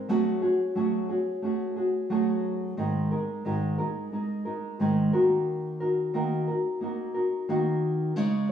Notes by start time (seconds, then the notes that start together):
0.08 F#3 A3 C#4 F#4 G#4
0.42 C#4 F#4 G#4
0.75 F#3 A3 C#4 F#4 G#4
1.09 C#4 F#4 G#4
1.42 A3 C#4 F#4 G#4
1.76 C#4 F#4 G#4
2.10 F#3 A3 C#4 F#4 G#4
2.77 G#2 D#3 G#3 D#4 G#4 A#4
3.11 G#3 D#4 G#4 A#4
3.45 G#2 D#3 G#3 D#4 G#4 A#4
3.78 G#3 D#4 G#4 A#4
4.12 G#3 D#4 G#4 A#4
4.45 G#3 D#4 G#4 A#4
4.80 G#2 D#3 G#3 D#4 G#4 A#4
5.13 D#3 A#3 D#4 F#4 A#4
5.80 D#4 F#4 A#4
6.14 D#3 A#3 D#4 F#4 A#4
6.48 D#4 F#4 A#4
6.81 A#3 D#4 F#4 A#4
7.14 D#4 F#4 A#4
7.49 D#3 A#3 D#4 F#4 A#4
8.16 C#3 G#3 C#4 D#4 C#5